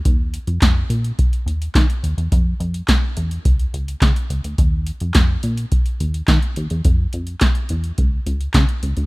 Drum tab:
HH |x-xxx-xxxxxxxxxx|x-xxx-xxxxxxxxxx|x-xxx-xxxxxxxxxx|x-xxxxxxx-xxxxxx|
CP |----x-------x---|----x-------x---|----x-------x---|----x-------x---|
SD |----o-------o---|----o-------o---|----o-------o---|----o-------o---|
BD |o---o---o---o---|o---o---o---o---|o---o---o---o---|o---o---o---o---|